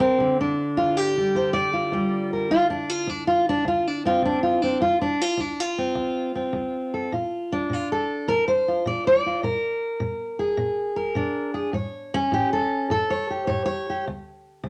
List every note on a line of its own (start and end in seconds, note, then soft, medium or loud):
0.00 0.16 G2 medium
0.00 0.19 D3 soft
0.00 0.39 C4 medium
0.00 0.77 F4 soft
0.00 0.17 A#4 soft
0.18 0.73 D2 medium
0.18 4.82 D3 soft
0.41 1.17 D4 medium
0.77 1.31 D2 medium
0.77 0.97 F4 medium
0.97 1.73 G4 medium
1.17 1.92 G3 soft
1.35 1.89 D2 medium
1.35 1.53 C5 medium
1.53 2.32 D5 medium
1.73 2.51 F4 soft
1.92 2.47 D2 medium
1.92 2.51 G3 soft
2.33 2.49 A#4 soft
2.51 3.05 D2 medium
2.51 2.70 F4 loud
2.70 2.90 D4 medium
2.90 3.09 F4 medium
3.07 3.62 D2 medium
3.07 3.27 D4 medium
3.27 3.47 F4 medium
3.49 3.67 D4 medium
3.65 4.20 D2 medium
3.65 3.87 F4 medium
3.87 4.06 D4 medium
4.05 4.62 C4 soft
4.05 4.25 F4 medium
4.22 4.77 D2 medium
4.22 4.43 D4 medium
4.43 4.62 F4 medium
4.62 4.80 C4 soft
4.62 4.81 D4 medium
4.81 5.35 D2 medium
4.81 5.01 F4 medium
5.01 5.21 D4 medium
5.21 5.40 F4 medium
5.37 5.92 D2 medium
5.37 5.60 D4 medium
5.60 7.12 F4 medium
5.78 6.34 C4 soft
5.95 6.50 D2 medium
6.35 7.10 C4 soft
6.53 7.08 D2 medium
6.94 7.10 A4 soft
7.12 7.66 A#2 medium
7.12 7.73 F4 soft
7.52 8.29 D4 medium
7.69 8.24 A#2 medium
7.69 7.91 F4 medium
7.92 8.29 A4 medium
8.28 8.82 A#2 medium
8.28 8.47 A#4 medium
8.48 8.86 C5 medium
8.68 9.25 F4 soft
8.86 9.40 A#2 medium
8.86 9.06 D5 medium
9.07 9.44 D5 medium
9.26 9.42 F4 soft
9.43 9.97 A#2 medium
9.43 10.95 A#4 medium
10.00 10.54 A#2 medium
10.39 11.53 G#4 medium
10.57 11.12 A#2 medium
10.96 11.54 A#4 medium
11.15 11.70 A#2 medium
11.15 11.72 D4 medium
11.54 11.71 G#4 medium
11.73 12.27 A2 medium
11.73 13.09 C#5 soft
12.14 12.90 C#4 loud
12.32 12.86 A2 medium
12.32 12.52 G4 medium
12.53 12.90 A4 medium
12.90 13.44 A2 medium
12.90 13.29 A4 medium
13.10 13.46 C#5 medium
13.30 13.87 G4 soft
13.47 14.02 A2 medium
13.47 13.64 C#5 medium
13.66 14.04 C#5 medium
13.90 14.04 G4 soft
14.07 14.60 D2 medium
14.64 14.69 D2 medium